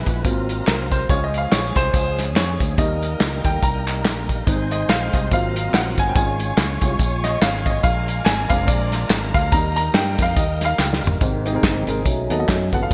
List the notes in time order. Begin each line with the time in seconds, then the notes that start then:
Already playing: G#3 B3 E4 B4 E5 G#5 B5
0.06 A#1, kick, closed hi-hat, tambourine
0.24 G#1 F#3 A#3 C4 F4 A#4 C5 D#5 F5 A#5, kick, closed hi-hat, tambourine
0.49 closed hi-hat, tambourine
0.67 C2 A#4, snare, clap, closed hi-hat, tambourine
0.91 C5, kick, closed hi-hat, tambourine
1.09 C#2 E3 G#3 C#4 F4 G#4 C#5 G#5, kick, closed hi-hat, tambourine
1.14 F3
1.24 D#5
1.34 F5, closed hi-hat, tambourine
1.52 A#1 C#5, snare, clap, closed hi-hat, tambourine
1.76 C2 C5, kick, snare, closed hi-hat, tambourine
1.94 C#2, kick, closed hi-hat, tambourine
2.19 snare, closed hi-hat, tambourine
2.36 F2 C#5, snare, clap, closed hi-hat, tambourine
2.60 D2, kick, closed hi-hat, tambourine
2.78 D#2 G3 A#3 D#4 A#4 D#5 G5 A#5, kick, closed hi-hat, tambourine
3.03 closed hi-hat, tambourine
3.20 C#2, snare, clap, closed hi-hat, tambourine
3.44 D#2 G5, kick, closed hi-hat, tambourine
3.62 C2 A#5, kick, closed hi-hat, tambourine
3.87 clap, closed hi-hat, tambourine
4.04 A#1, snare, clap, closed hi-hat, tambourine
4.29 kick, closed hi-hat, tambourine
4.46 G#1 G#3 C4 D#4 B4 C5 G#5 C6, kick, closed hi-hat, tambourine
4.52 C5
4.71 D#5, closed hi-hat, tambourine
4.88 A#1 F5, snare, clap, closed hi-hat, tambourine
5.13 C2 D#5, kick, closed hi-hat, tambourine
5.30 G#1 F#3 A#3 C4 F4 A#4 D#5 F5 A#5, kick, closed hi-hat, tambourine
5.56 closed hi-hat, tambourine
5.73 A#1 F#5, snare, clap, closed hi-hat, tambourine
5.98 G1 G#5, kick, closed hi-hat, tambourine
6.09 G5
6.15 G#1 G#3 C#4 E4 F4 C#5 G#5 C#6, kick, closed hi-hat, tambourine
6.21 F4
6.40 closed hi-hat, tambourine
6.57 C#2, snare, clap, closed hi-hat, tambourine
6.81 C2 G#3 C#4 F4, kick, closed hi-hat, tambourine
6.99 A#1, kick, closed hi-hat, tambourine
7.24 D#5, snare, closed hi-hat, tambourine
7.42 G#1 F5, snare, clap, closed hi-hat, tambourine
7.66 D#5, kick, closed hi-hat, tambourine
7.83 A#1 G#3 D4 F4 A#4 D5 F5 A#5, kick, closed hi-hat, tambourine
8.08 closed hi-hat, tambourine
8.25 G#1 G#5, snare, clap, closed hi-hat, tambourine
8.49 F1 G#3 C4 D4 F5, kick, closed hi-hat, tambourine
8.67 A#1 D5, kick, closed hi-hat, tambourine
8.92 snare, closed hi-hat, tambourine
9.10 G#1, snare, clap, closed hi-hat, tambourine
9.34 D2 F5, kick, closed hi-hat, tambourine
9.52 D#2 F#3 G3 A#3 D#4 A#4 D#5 G5 A#5, kick, closed hi-hat, tambourine
9.58 G3
9.76 A#5, closed hi-hat, tambourine
9.94 G2 G5, snare, clap, closed hi-hat, tambourine
10.18 F2 F5, kick, snare, closed hi-hat, tambourine
10.36 D#2 D#5, kick, closed hi-hat, tambourine
10.61 F5, snare, closed hi-hat, tambourine
10.79 C#2 G5, snare, clap, tambourine
10.93 snare
11.04 G1, floor tom, tambourine
11.20 G#1 G#2 C3 D#3 G#3 C4 D#4, kick, closed hi-hat, tambourine
11.45 C4 D#4 G#4 D#5, closed hi-hat, tambourine
11.54 D#3 G#3 C4 D#4 G#4 A#4
11.63 G1, kick, snare, clap, closed hi-hat, tambourine
11.87 G#1 C4 C#4 D#4 G#4 A#4, closed hi-hat, tambourine
12.04 B1 B2 F#3 A3 C#4 D#4, kick, closed hi-hat, tambourine
12.30 D#2 B3 F#4 A4 D#5, closed hi-hat, tambourine
12.38 B3 F#4 A4 D#5
12.46 F#2 A3, kick, snare, clap, closed hi-hat, tambourine
12.72 G1 B2 E3 G#3 B3 F#4 A4 F#5, kick, closed hi-hat, tambourine
12.81 B3 F#4 A4 F5
12.90 G#1 G#3, kick